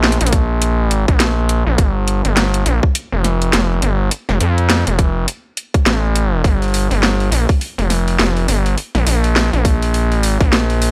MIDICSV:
0, 0, Header, 1, 3, 480
1, 0, Start_track
1, 0, Key_signature, -2, "minor"
1, 0, Tempo, 582524
1, 1470, Time_signature, 4, 2, 24, 8
1, 8990, End_track
2, 0, Start_track
2, 0, Title_t, "Analog synth bass"
2, 0, Program_c, 0, 38
2, 0, Note_on_c, 0, 34, 96
2, 151, Note_off_c, 0, 34, 0
2, 173, Note_on_c, 0, 34, 98
2, 668, Note_off_c, 0, 34, 0
2, 668, Note_on_c, 0, 33, 98
2, 871, Note_off_c, 0, 33, 0
2, 892, Note_on_c, 0, 34, 99
2, 1350, Note_off_c, 0, 34, 0
2, 1373, Note_on_c, 0, 34, 98
2, 1454, Note_off_c, 0, 34, 0
2, 1469, Note_on_c, 0, 31, 100
2, 1830, Note_off_c, 0, 31, 0
2, 1854, Note_on_c, 0, 31, 94
2, 2175, Note_off_c, 0, 31, 0
2, 2191, Note_on_c, 0, 34, 99
2, 2311, Note_off_c, 0, 34, 0
2, 2575, Note_on_c, 0, 29, 98
2, 2895, Note_off_c, 0, 29, 0
2, 2913, Note_on_c, 0, 29, 98
2, 3136, Note_off_c, 0, 29, 0
2, 3154, Note_on_c, 0, 31, 96
2, 3376, Note_off_c, 0, 31, 0
2, 3536, Note_on_c, 0, 29, 100
2, 3616, Note_off_c, 0, 29, 0
2, 3633, Note_on_c, 0, 41, 98
2, 3992, Note_off_c, 0, 41, 0
2, 4014, Note_on_c, 0, 29, 100
2, 4335, Note_off_c, 0, 29, 0
2, 4830, Note_on_c, 0, 33, 100
2, 5295, Note_off_c, 0, 33, 0
2, 5310, Note_on_c, 0, 31, 99
2, 5671, Note_off_c, 0, 31, 0
2, 5693, Note_on_c, 0, 31, 96
2, 6014, Note_off_c, 0, 31, 0
2, 6028, Note_on_c, 0, 34, 100
2, 6150, Note_off_c, 0, 34, 0
2, 6414, Note_on_c, 0, 29, 99
2, 6735, Note_off_c, 0, 29, 0
2, 6751, Note_on_c, 0, 29, 99
2, 6975, Note_off_c, 0, 29, 0
2, 6991, Note_on_c, 0, 31, 100
2, 7215, Note_off_c, 0, 31, 0
2, 7373, Note_on_c, 0, 34, 102
2, 7455, Note_off_c, 0, 34, 0
2, 7471, Note_on_c, 0, 34, 101
2, 7831, Note_off_c, 0, 34, 0
2, 7855, Note_on_c, 0, 34, 98
2, 8350, Note_off_c, 0, 34, 0
2, 8350, Note_on_c, 0, 33, 98
2, 8551, Note_off_c, 0, 33, 0
2, 8574, Note_on_c, 0, 34, 100
2, 8990, Note_off_c, 0, 34, 0
2, 8990, End_track
3, 0, Start_track
3, 0, Title_t, "Drums"
3, 29, Note_on_c, 9, 38, 124
3, 29, Note_on_c, 9, 42, 38
3, 101, Note_off_c, 9, 42, 0
3, 101, Note_on_c, 9, 42, 49
3, 112, Note_off_c, 9, 38, 0
3, 171, Note_off_c, 9, 42, 0
3, 171, Note_on_c, 9, 42, 63
3, 218, Note_off_c, 9, 42, 0
3, 218, Note_on_c, 9, 42, 66
3, 268, Note_off_c, 9, 42, 0
3, 268, Note_on_c, 9, 42, 68
3, 269, Note_on_c, 9, 36, 110
3, 350, Note_off_c, 9, 42, 0
3, 351, Note_off_c, 9, 36, 0
3, 508, Note_on_c, 9, 42, 85
3, 590, Note_off_c, 9, 42, 0
3, 749, Note_on_c, 9, 42, 70
3, 832, Note_off_c, 9, 42, 0
3, 892, Note_on_c, 9, 36, 112
3, 893, Note_on_c, 9, 42, 40
3, 974, Note_off_c, 9, 36, 0
3, 975, Note_off_c, 9, 42, 0
3, 988, Note_on_c, 9, 38, 127
3, 988, Note_on_c, 9, 42, 87
3, 1071, Note_off_c, 9, 38, 0
3, 1071, Note_off_c, 9, 42, 0
3, 1229, Note_on_c, 9, 42, 70
3, 1312, Note_off_c, 9, 42, 0
3, 1469, Note_on_c, 9, 36, 127
3, 1470, Note_on_c, 9, 42, 82
3, 1551, Note_off_c, 9, 36, 0
3, 1552, Note_off_c, 9, 42, 0
3, 1711, Note_on_c, 9, 42, 71
3, 1793, Note_off_c, 9, 42, 0
3, 1853, Note_on_c, 9, 42, 38
3, 1935, Note_off_c, 9, 42, 0
3, 1950, Note_on_c, 9, 38, 127
3, 1950, Note_on_c, 9, 42, 83
3, 2033, Note_off_c, 9, 38, 0
3, 2033, Note_off_c, 9, 42, 0
3, 2094, Note_on_c, 9, 42, 62
3, 2176, Note_off_c, 9, 42, 0
3, 2191, Note_on_c, 9, 42, 67
3, 2273, Note_off_c, 9, 42, 0
3, 2332, Note_on_c, 9, 36, 115
3, 2415, Note_off_c, 9, 36, 0
3, 2431, Note_on_c, 9, 42, 85
3, 2514, Note_off_c, 9, 42, 0
3, 2673, Note_on_c, 9, 40, 52
3, 2673, Note_on_c, 9, 42, 67
3, 2756, Note_off_c, 9, 40, 0
3, 2756, Note_off_c, 9, 42, 0
3, 2815, Note_on_c, 9, 42, 39
3, 2898, Note_off_c, 9, 42, 0
3, 2910, Note_on_c, 9, 38, 127
3, 2910, Note_on_c, 9, 42, 83
3, 2992, Note_off_c, 9, 38, 0
3, 2992, Note_off_c, 9, 42, 0
3, 3149, Note_on_c, 9, 42, 67
3, 3232, Note_off_c, 9, 42, 0
3, 3389, Note_on_c, 9, 42, 82
3, 3472, Note_off_c, 9, 42, 0
3, 3534, Note_on_c, 9, 40, 49
3, 3616, Note_off_c, 9, 40, 0
3, 3630, Note_on_c, 9, 42, 66
3, 3712, Note_off_c, 9, 42, 0
3, 3774, Note_on_c, 9, 42, 36
3, 3856, Note_off_c, 9, 42, 0
3, 3869, Note_on_c, 9, 38, 127
3, 3869, Note_on_c, 9, 42, 81
3, 3952, Note_off_c, 9, 38, 0
3, 3952, Note_off_c, 9, 42, 0
3, 4013, Note_on_c, 9, 42, 60
3, 4096, Note_off_c, 9, 42, 0
3, 4109, Note_on_c, 9, 36, 108
3, 4109, Note_on_c, 9, 42, 65
3, 4191, Note_off_c, 9, 36, 0
3, 4192, Note_off_c, 9, 42, 0
3, 4350, Note_on_c, 9, 42, 79
3, 4432, Note_off_c, 9, 42, 0
3, 4591, Note_on_c, 9, 42, 65
3, 4674, Note_off_c, 9, 42, 0
3, 4733, Note_on_c, 9, 36, 113
3, 4734, Note_on_c, 9, 42, 37
3, 4815, Note_off_c, 9, 36, 0
3, 4817, Note_off_c, 9, 42, 0
3, 4831, Note_on_c, 9, 38, 127
3, 4831, Note_on_c, 9, 42, 80
3, 4913, Note_off_c, 9, 38, 0
3, 4913, Note_off_c, 9, 42, 0
3, 5072, Note_on_c, 9, 42, 66
3, 5155, Note_off_c, 9, 42, 0
3, 5309, Note_on_c, 9, 36, 118
3, 5313, Note_on_c, 9, 46, 42
3, 5392, Note_off_c, 9, 36, 0
3, 5396, Note_off_c, 9, 46, 0
3, 5456, Note_on_c, 9, 46, 20
3, 5471, Note_off_c, 9, 46, 0
3, 5471, Note_on_c, 9, 46, 17
3, 5503, Note_off_c, 9, 46, 0
3, 5503, Note_on_c, 9, 46, 11
3, 5519, Note_off_c, 9, 46, 0
3, 5519, Note_on_c, 9, 46, 9
3, 5535, Note_off_c, 9, 46, 0
3, 5535, Note_on_c, 9, 46, 8
3, 5553, Note_off_c, 9, 46, 0
3, 5553, Note_on_c, 9, 46, 76
3, 5636, Note_off_c, 9, 46, 0
3, 5695, Note_on_c, 9, 46, 32
3, 5778, Note_off_c, 9, 46, 0
3, 5792, Note_on_c, 9, 38, 124
3, 5792, Note_on_c, 9, 46, 43
3, 5874, Note_off_c, 9, 38, 0
3, 5874, Note_off_c, 9, 46, 0
3, 5935, Note_on_c, 9, 46, 21
3, 6018, Note_off_c, 9, 46, 0
3, 6032, Note_on_c, 9, 46, 76
3, 6114, Note_off_c, 9, 46, 0
3, 6173, Note_on_c, 9, 36, 112
3, 6176, Note_on_c, 9, 46, 32
3, 6255, Note_off_c, 9, 36, 0
3, 6258, Note_off_c, 9, 46, 0
3, 6272, Note_on_c, 9, 46, 42
3, 6355, Note_off_c, 9, 46, 0
3, 6416, Note_on_c, 9, 46, 22
3, 6499, Note_off_c, 9, 46, 0
3, 6511, Note_on_c, 9, 40, 50
3, 6511, Note_on_c, 9, 46, 73
3, 6593, Note_off_c, 9, 40, 0
3, 6593, Note_off_c, 9, 46, 0
3, 6655, Note_on_c, 9, 46, 32
3, 6738, Note_off_c, 9, 46, 0
3, 6752, Note_on_c, 9, 38, 119
3, 6752, Note_on_c, 9, 46, 44
3, 6834, Note_off_c, 9, 38, 0
3, 6834, Note_off_c, 9, 46, 0
3, 6894, Note_on_c, 9, 46, 22
3, 6976, Note_off_c, 9, 46, 0
3, 6990, Note_on_c, 9, 46, 76
3, 7073, Note_off_c, 9, 46, 0
3, 7135, Note_on_c, 9, 46, 32
3, 7217, Note_off_c, 9, 46, 0
3, 7231, Note_on_c, 9, 46, 45
3, 7314, Note_off_c, 9, 46, 0
3, 7374, Note_on_c, 9, 40, 53
3, 7374, Note_on_c, 9, 46, 22
3, 7456, Note_off_c, 9, 40, 0
3, 7456, Note_off_c, 9, 46, 0
3, 7470, Note_on_c, 9, 46, 80
3, 7553, Note_off_c, 9, 46, 0
3, 7614, Note_on_c, 9, 46, 33
3, 7697, Note_off_c, 9, 46, 0
3, 7713, Note_on_c, 9, 38, 118
3, 7713, Note_on_c, 9, 46, 44
3, 7795, Note_off_c, 9, 38, 0
3, 7795, Note_off_c, 9, 46, 0
3, 7856, Note_on_c, 9, 46, 21
3, 7939, Note_off_c, 9, 46, 0
3, 7950, Note_on_c, 9, 36, 101
3, 7951, Note_on_c, 9, 46, 77
3, 8033, Note_off_c, 9, 36, 0
3, 8034, Note_off_c, 9, 46, 0
3, 8095, Note_on_c, 9, 46, 34
3, 8178, Note_off_c, 9, 46, 0
3, 8192, Note_on_c, 9, 46, 44
3, 8274, Note_off_c, 9, 46, 0
3, 8336, Note_on_c, 9, 46, 23
3, 8419, Note_off_c, 9, 46, 0
3, 8432, Note_on_c, 9, 46, 78
3, 8514, Note_off_c, 9, 46, 0
3, 8574, Note_on_c, 9, 36, 105
3, 8576, Note_on_c, 9, 46, 33
3, 8657, Note_off_c, 9, 36, 0
3, 8658, Note_off_c, 9, 46, 0
3, 8673, Note_on_c, 9, 38, 119
3, 8673, Note_on_c, 9, 46, 47
3, 8756, Note_off_c, 9, 38, 0
3, 8756, Note_off_c, 9, 46, 0
3, 8816, Note_on_c, 9, 46, 22
3, 8898, Note_off_c, 9, 46, 0
3, 8913, Note_on_c, 9, 46, 77
3, 8990, Note_off_c, 9, 46, 0
3, 8990, End_track
0, 0, End_of_file